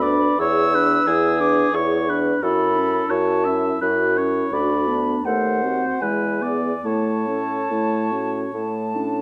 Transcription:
Already playing: D2 B5
0.01 D4 B4 D5
0.39 E2 E4 G#4 C#5 E6
0.74 D4 B4
1.07 E2 E4 G#4
1.40 D4 B4 D6
1.73 E2 E4 G#4 C#5 C#6
2.08 D4 B4
2.42 F#2 E4 F#4 A4 B5
2.76 C#4 E4
3.10 F#2 E4 F#4 C#5 A5
3.45 C#4 E4 E5
3.81 F#2 E4 F#4 B4
4.17 C#4 E4 C#5
4.52 D2 D4 F#4 D5 B5
4.87 B3 D4
5.24 D#2 A3 A4 C5 F#5
5.63 C4 F#4
6.01 E2 G#3 E4 B4 G#5
6.42 B3 G#4 D5
6.84 A2 A3 E4 C#5 A5
7.28 C#4 A4
7.71 A2 A3 E4
8.12 C#4 F#4
8.53 A2 A3 E4 A5
8.96 C#4 D4

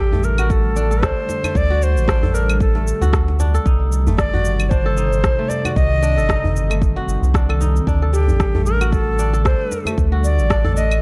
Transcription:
Already playing: A1 D3 G3 A3 D4 F#4 G4 A4 C5
0.12 A3, djembe bass
0.23 A#4, shaker
0.38 F#4, claves, shaker
0.50 A4, kick, shaker
0.76 D4, shaker
0.91 A4, shaker
1.02 C2 D4 C5, kick, cross-stick, shaker
1.29 djembe slap, shaker
1.44 A3, djembe tone, claves, shaker
1.55 D2 D5, kick, shaker
1.70 F#4
1.82 C5, shaker
1.96 A1, shaker
2.08 D4, kick, cross-stick, shaker
2.23 A4, djembe bass
2.34 D4 A#4, shaker
2.50 claves, shaker
2.60 A4, kick, shaker
2.75 A3, djembe slap
2.87 shaker
3.01 D2 F#4, djembe slap, djembe tone, shaker
3.13 kick, cross-stick, shaker
3.28 djembe slap
3.40 D4, djembe tone, shaker
3.54 A4, shaker
3.65 C2 C3 D#3 D#4, kick, shaker
3.92 shaker
4.07 G1 A3, djembe bass, shaker
4.18 D5, kick, cross-stick, shaker
4.33 F#4, djembe bass
4.45 shaker
4.60 claves, shaker
4.70 D4 C5, kick, shaker
4.86 A4
4.97 D#4, shaker
5.13 shaker
5.24 A#1, kick, cross-stick, shaker
5.39 A3
5.49 D5, djembe slap, shaker
5.65 F#4, djembe tone, claves, shaker
5.75 C2 C4 D#5, kick, shaker
6.03 D4, shaker
6.17 G1 A4, djembe slap, shaker
6.29 D#4, kick, cross-stick, shaker
6.44 djembe bass
6.56 shaker
6.70 A3, claves, shaker
6.82 G1, kick, shaker
6.96 F#4, djembe slap
7.08 G1, shaker
7.22 C2, djembe slap, djembe tone, shaker
7.34 D4, kick, cross-stick, shaker
7.49 A4, djembe slap, claves
7.61 D#4, djembe tone, shaker
7.76 shaker
7.86 D2 D3 G3 A3 D4, kick, shaker
8.02 A4
8.13 D4 G4, shaker
8.28 A1, djembe bass, shaker
8.40 kick, cross-stick, shaker
8.55 A3, djembe bass
8.65 A#4, shaker
8.81 F#4, claves, shaker
8.85 A#4
8.91 A4, kick, shaker
9.19 D4, shaker
9.33 A4, shaker
9.45 C2 D4 C5, kick, cross-stick, shaker
9.72 djembe slap, shaker
9.85 A3, djembe tone, claves, shaker
9.98 D2, kick, shaker
10.12 F#4
10.24 D5, shaker
10.39 A1, shaker
10.50 D4, kick, cross-stick, shaker
10.64 A4, djembe bass
10.76 D4 D#5, shaker
10.91 claves, shaker

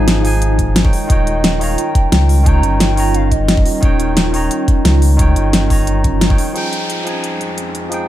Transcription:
Already playing: G#1 F3 G#3 D#4 F4 G#4 G5 G#5
0.08 snare, closed hi-hat
0.22 F3 D#4 G#4, open hi-hat
0.27 G#5
0.42 closed hi-hat
0.59 kick, closed hi-hat
0.76 snare, closed hi-hat
0.83 D#3 D#4 C#5 G5, kick
0.93 G3 C#4, open hi-hat
1.07 D#1 D#3 D#4 C#5 D#5, kick, closed hi-hat
1.12 G5
1.27 closed hi-hat
1.44 snare, closed hi-hat
1.59 D#3 D#4 C#5 F5, open hi-hat
1.63 A#5
1.78 G5, closed hi-hat
1.95 kick, closed hi-hat
2.12 C#2 G5, snare, closed hi-hat
2.29 open hi-hat
2.44 D#3 D#4 C#5 A#5, kick, closed hi-hat
2.49 G5
2.63 G1, closed hi-hat
2.80 G5, snare, closed hi-hat
2.95 D#3 D#4 C#5, open hi-hat
3.00 A#5
3.14 F5, closed hi-hat
3.31 D#5, kick, closed hi-hat
3.48 snare, closed hi-hat
3.57 kick
3.66 open hi-hat
3.80 D#1 D#3 D#4 C#5, kick, closed hi-hat
3.85 G5
4.00 closed hi-hat
4.17 snare, closed hi-hat
4.31 D#3 D#4 C#5, open hi-hat
4.36 A#5
4.51 closed hi-hat
4.68 kick, closed hi-hat
4.85 C#2, snare, closed hi-hat
5.02 open hi-hat
5.17 D#3 D#4 C#5, kick, closed hi-hat
5.21 G5
5.36 G1, closed hi-hat
5.53 snare, closed hi-hat
5.68 D#3 D#4 C#5, kick, open hi-hat
5.73 A#5
5.87 closed hi-hat
6.04 kick, closed hi-hat
6.21 snare, closed hi-hat
6.29 D#3 D#4 C#5 G5, kick
6.38 open hi-hat
6.53 F2 F3 G#3 C4 D#4 G#4, closed hi-hat, downlifter
6.58 G5
6.73 closed hi-hat
6.90 closed hi-hat
7.04 F3 D#4 G#4, closed hi-hat
7.09 G#5
7.24 closed hi-hat
7.41 closed hi-hat
7.58 closed hi-hat
7.75 closed hi-hat
7.89 F3 D#4 G#4, closed hi-hat
7.94 G5

